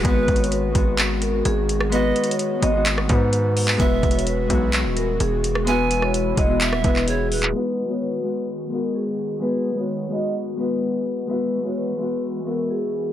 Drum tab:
HH |x-----x-x-x-x-----x-----x-----x-----x-----x-----|x-----x-x-x-x-----x-----x-----x-----x-----o-----|x-----x-x-x-x-----x-----x-----x-----x-----x-----|x-----x-----x-----x-----x-----x-----x-----o-----|
CP |------------------------x-----------------------|------------------------x--------------------x--|------------------------x-----------------------|------------------------x--------x-----------x--|
SD |---------------------------------------------r--|---------------------------r--------------------|---------------------------------------------r--|---------r-----------------r--------------------|
BD |o-----o-----------o-----------------------------|------------------------------o-----------------|o-----o-----------o-----------------------------|------------------o-----------o-----------------|

HH |------------------------------------------------|------------------------------------------------|------------------------------------------------|
CP |------------------------------------------------|------------------------------------------------|------------------------------------------------|
SD |------------------------------------------------|------------------------------------------------|------------------------------------------------|
BD |------------------------------------------------|------------------------------------------------|------------------------------------------------|